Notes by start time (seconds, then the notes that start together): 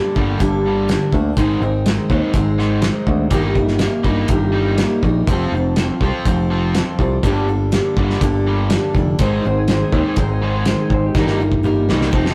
Already playing: G2 D3 G3 A#3 D4 A4
0.15 G1 G2 D3 G3 A#3 D4 A4, kick
0.39 G1 G2 D3 G3 A#3 D4 A4, kick, closed hi-hat
0.65 G2 D3 G3
0.88 G2 D3 G3 A#3 D4 A4, snare, closed hi-hat
1.12 D2 G2 D3 G3 A#3 D4 A4, kick
1.37 G#1 G#2 D#3 G#3 C4 D#4 A#4, kick, closed hi-hat
1.60 G#1 G#2 D#3 C4 D#4 A#4
1.86 G#2 D#3 G#3 C4 D#4 A#4, snare, closed hi-hat
2.10 D#2 G#2 D#3 G#3 C4 D#4 A#4, kick
2.34 G#1 G#2 D#3 G#3 C4 D#4 A#4, kick, closed hi-hat
2.58 G#2 D#3 G#3, snare
2.82 G#2 D#3 G#3 C4 D#4 A#4, snare, closed hi-hat
3.07 D2 G#2 D#3, kick
3.31 G1 G2 D#3 G3 A#3 D#4 A#4, kick, closed hi-hat
3.55 G3 A#3 D#4 A#4, kick
3.68 snare
3.79 G3 A#3, snare, closed hi-hat
3.83 D#4 A#4
4.03 G1 G3 A#3 D#4 A#4, kick
4.07 G3 A#3
4.28 G1 G2 D#3 G3 A#3 D#4 A#4, kick, closed hi-hat
4.53 G3 A#3 D#4
4.78 G3 A#3 D#4, snare, closed hi-hat
4.82 A#4
5.03 A#1 G3 A#3 D#4 A#4, kick
5.27 F1 F3 C4 F4 A4, kick, closed hi-hat
5.52 F1 F3 C4 A4
5.57 C4 F4
5.76 F3 C4, snare, closed hi-hat
5.80 F4 A4
6.01 C2 F3 C4 F4 A4, kick
6.05 C4
6.25 F1 F3 C4 F4 A4, kick, closed hi-hat
6.50 F3 C4 F4
6.75 F3 C4 F4 A4, snare, closed hi-hat
6.99 C2 F3 C4 F4 A4, kick
7.23 G1 G2 D3 G3 A#3 D4 A4, kick, closed hi-hat
7.48 G2 D3 G3 A#3 D4 A4
7.72 G2 D3 G3 A#3 D4 A4, snare, closed hi-hat
7.97 G1 G2 D3 G3, kick
8.10 snare
8.21 G1 G2 D3 G3 A#3 D4 A4, kick, closed hi-hat
8.46 G2 D3 G3
8.70 G2 D3 G3 A#3 D4 A4, snare, closed hi-hat
8.95 F1 G2 D3 G3 A#3 D4 A4, kick
9.19 G#1 G#2 D#3 G#3 C4 D#4 A#4 C5, kick, closed hi-hat
9.33 G#4
9.45 G#1 G#2 D#3 C4 D#4 A#4 C5
9.59 G#4
9.68 G#2 D#3 G#3 C4 D#4 A#4 C5, snare, closed hi-hat
9.83 G#4
9.93 D#2 G#2 D#3 G#3 C4 D#4 A#4 C5, kick
10.08 G#4
10.16 G#1 G#2 D#3 G#3 C4 D#4 A#4, kick, closed hi-hat
10.20 C5
10.32 G#4
10.42 G#2 D#3 G#3 C5
10.56 G#4
10.66 G#2 D#3 G#3 C4 D#4 A#4 C5, snare, closed hi-hat
10.81 G#4
10.90 G#1 G#2 D#3, kick
10.94 C5
11.06 G4
11.15 G1 G2 D#3 G3 A#3 D#4 A#4, kick, snare
11.27 snare
11.39 G3 A#3 D#4 A#4
11.52 kick
11.63 G3 A#3 D#4 A#4, mid tom
11.89 C2 G3 A#3 D#4 A#4, snare
12.01 snare
12.12 F1 F3 C4 D#4 A4, kick
12.26 snare